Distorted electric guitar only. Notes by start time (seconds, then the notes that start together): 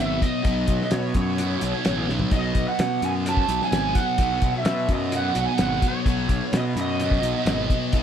Already playing: B2 F#3 B3
0.43 B2 F#3
0.48 B3
1.39 B2 F#3
1.43 B3
2.32 B2 F#3
2.36 B3
3.26 B2 F#3 B3
4.18 B2 F#3 B3
5.13 B2 F#3
5.17 B3
6.06 B2 F#3 B3
7.00 B2 F#3
7.05 B3
7.93 B2 F#3 B3